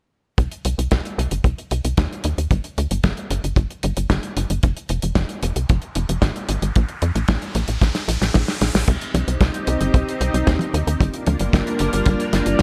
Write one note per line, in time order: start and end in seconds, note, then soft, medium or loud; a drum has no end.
0.38 0.48 C2 loud
0.38 kick loud
0.38 closed hi-hat medium
0.51 closed hi-hat soft
0.65 0.75 C2 medium
0.65 closed hi-hat loud
0.78 0.88 C2 medium
0.78 closed hi-hat medium
0.91 1.01 C2 medium
0.91 kick loud
0.91 snare loud
0.91 closed hi-hat medium
1.05 closed hi-hat soft
1.18 1.28 C2 medium
1.18 closed hi-hat loud
1.31 1.41 G1 medium
1.31 closed hi-hat medium
1.44 1.54 C2 loud
1.44 kick loud
1.44 closed hi-hat medium
1.58 closed hi-hat soft
1.71 1.81 C2 medium
1.71 closed hi-hat medium
1.85 1.94 C2 medium
1.85 closed hi-hat medium
1.97 2.08 D#2 loud
1.97 kick loud
1.97 snare loud
1.97 closed hi-hat medium
2.13 closed hi-hat soft
2.24 2.34 D#2 medium
2.24 closed hi-hat medium
2.38 2.47 D#2 medium
2.38 closed hi-hat medium
2.51 2.61 G1 loud
2.51 kick loud
2.51 closed hi-hat medium
2.64 closed hi-hat soft
2.78 2.87 D2 medium
2.78 closed hi-hat medium
2.91 3.01 G1 medium
2.91 closed hi-hat medium
3.04 3.14 G1 medium
3.04 kick loud
3.04 snare loud
3.04 closed hi-hat medium
3.17 closed hi-hat soft
3.31 3.40 G1 medium
3.31 closed hi-hat loud
3.44 3.54 G1 medium
3.44 closed hi-hat medium
3.56 3.66 G1 loud
3.56 kick loud
3.56 closed hi-hat medium
3.71 closed hi-hat soft
3.83 3.93 G1 medium
3.83 closed hi-hat loud
3.97 4.07 G1 medium
3.97 closed hi-hat medium
4.10 4.20 G1 loud
4.10 kick loud
4.10 snare loud
4.10 closed hi-hat medium
4.23 closed hi-hat soft
4.37 4.46 G1 medium
4.37 closed hi-hat medium
4.50 4.60 G1 medium
4.50 closed hi-hat medium
4.63 4.73 F1 loud
4.63 kick loud
4.63 closed hi-hat medium
4.63 riser medium
4.77 closed hi-hat soft
4.89 4.99 F1 medium
4.89 closed hi-hat medium
5.02 5.13 F1 medium
5.02 closed hi-hat medium
5.15 5.26 F1 loud
5.15 kick loud
5.15 snare loud
5.15 closed hi-hat medium
5.29 closed hi-hat soft
5.43 5.53 F1 medium
5.43 closed hi-hat loud
5.56 5.66 C2 medium
5.56 closed hi-hat medium
5.69 5.79 F1 loud
5.69 kick loud
5.69 closed hi-hat medium
5.82 closed hi-hat soft
5.95 6.06 F1 medium
5.95 closed hi-hat medium
6.09 6.19 F1 medium
6.09 closed hi-hat medium
6.22 6.32 G#1 loud
6.22 kick loud
6.22 snare loud
6.22 closed hi-hat medium
6.36 closed hi-hat soft
6.49 6.59 G#1 medium
6.49 closed hi-hat loud
6.62 6.72 G#1 medium
6.62 closed hi-hat medium
6.76 6.86 A#1 loud
6.76 kick loud
6.76 closed hi-hat medium
6.89 closed hi-hat soft
7.02 7.12 F2 loud
7.02 closed hi-hat medium
7.15 7.25 A#1 medium
7.15 closed hi-hat medium
7.28 7.38 A#1 loud
7.28 kick loud
7.28 snare loud
7.28 closed hi-hat medium
7.42 closed hi-hat soft
7.55 7.65 A#1 medium
7.55 closed hi-hat medium
7.68 7.78 A#1 medium
7.68 closed hi-hat medium
7.82 7.91 A#1 loud
7.82 kick loud
7.82 snare medium
7.82 closed hi-hat medium
7.95 snare soft
7.95 closed hi-hat soft
8.08 8.18 A#1 medium
8.08 closed hi-hat loud
8.21 8.31 A#1 medium
8.21 snare medium
8.21 closed hi-hat medium
8.34 8.45 A#1 medium
8.34 kick loud
8.34 snare medium
8.34 closed hi-hat medium
8.48 snare medium
8.48 closed hi-hat soft
8.61 8.71 A#1 medium
8.61 snare medium
8.61 closed hi-hat medium
8.75 8.84 A#1 medium
8.75 snare medium
8.75 closed hi-hat medium
8.88 8.98 C2 loud
8.88 10.98 C4 medium
8.88 10.98 D#4 medium
8.88 10.98 G4 medium
8.88 kick loud
8.88 closed hi-hat medium
8.88 crash medium
9.01 closed hi-hat medium
9.14 9.24 C2 loud
9.14 closed hi-hat medium
9.14 high tom medium
9.28 9.38 C2 medium
9.28 closed hi-hat medium
9.41 9.51 C2 loud
9.41 kick loud
9.41 snare loud
9.41 closed hi-hat medium
9.54 closed hi-hat medium
9.67 9.77 C2 medium
9.67 closed hi-hat medium
9.81 9.91 G1 medium
9.81 closed hi-hat medium
9.94 10.04 C2 loud
9.94 kick loud
9.94 closed hi-hat medium
10.09 closed hi-hat medium
10.21 10.30 C2 medium
10.21 closed hi-hat medium
10.34 10.44 C2 medium
10.34 closed hi-hat medium
10.47 10.57 D#2 loud
10.47 kick loud
10.47 snare loud
10.47 closed hi-hat medium
10.59 closed hi-hat medium
10.59 high tom medium
10.74 10.84 D#2 medium
10.74 closed hi-hat medium
10.87 10.97 D#2 medium
10.87 closed hi-hat medium
11.00 11.10 G1 loud
11.00 12.62 G3 medium
11.00 12.62 A#3 medium
11.00 12.62 D4 medium
11.00 12.62 F4 medium
11.00 12.62 A#4 medium
11.00 kick loud
11.00 closed hi-hat medium
11.14 closed hi-hat medium
11.27 11.37 D2 loud
11.27 closed hi-hat medium
11.27 high tom medium
11.39 11.50 G1 medium
11.39 closed hi-hat medium
11.53 11.63 G1 loud
11.53 kick loud
11.53 snare loud
11.53 closed hi-hat medium
11.67 closed hi-hat medium
11.79 11.90 G1 medium
11.79 closed hi-hat medium
11.93 12.03 G1 medium
11.93 closed hi-hat medium
12.06 12.16 G1 loud
12.06 kick loud
12.06 closed hi-hat medium
12.20 closed hi-hat soft
12.33 12.43 G1 medium
12.33 snare medium
12.33 closed hi-hat medium
12.46 12.56 G1 medium
12.46 closed hi-hat medium
12.59 snare loud